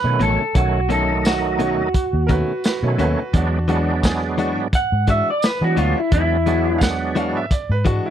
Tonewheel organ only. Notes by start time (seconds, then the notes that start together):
0.04 D#3 F#3 A3 C#4
0.54 D#3 F#3 A3 C#4
0.89 D#3 F#3 A3 D#4
2.83 D#3 F#3 A3 C#4
3.33 F#3 G#3 B3 D4
3.68 F#3 G#3 B3 D4
5.62 F#3 G#3 B3 D4
6.12 F#3 G#3 B3 D4
6.47 F#3 G#3 B3 D4